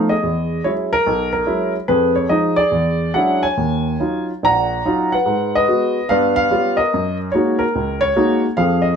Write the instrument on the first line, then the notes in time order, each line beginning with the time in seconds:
upright piano
Already playing: F3 A3 B3 D#4 F5
0.09 G#4 D#5
0.23 E2
0.64 F#3 G#3 C#4 E4 C#5
0.93 A#4
1.07 B1
1.33 A#4
1.46 F#3 G#3 C#4 E4
1.88 F2 G#4 B4
2.15 C#5
2.29 F3 G#3 D#4 D#5
2.56 G#4 D5
2.71 E2
3.14 F#3 G#3 C#4 D4 E4 F#5
3.43 C#5 G#5
3.57 D#2
4.00 F#3 C#4 D#4 F4
4.43 A#1 A#2 F#5 A#5
4.85 F#3 C#4 D#4 F4
5.12 B4 F#5
5.26 G#2
5.55 B4 D#5
5.68 G#3 B3 F#4
6.09 G2 B3 B4 F5
6.36 F5
6.51 G3 B3 C#4 F4
6.77 A#4 D#5
6.94 F#2
7.32 G#3 A#3 D#4 F#4 C#5
7.59 A#4
7.75 C#2
8.01 C#5
8.16 G#3 A#3 D#4 F#4
8.57 F2 F3 G#4 F5
8.82 D#5